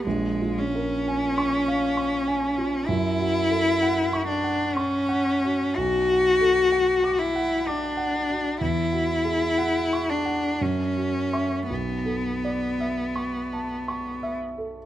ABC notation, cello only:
X:1
M:3/4
L:1/8
Q:1/4=62
K:A#phr
V:1 name="Cello"
G, C4- C | [K:Bm] E3 D C2 | F3 E D2 | E3 D C2 |
B,4- B, z |]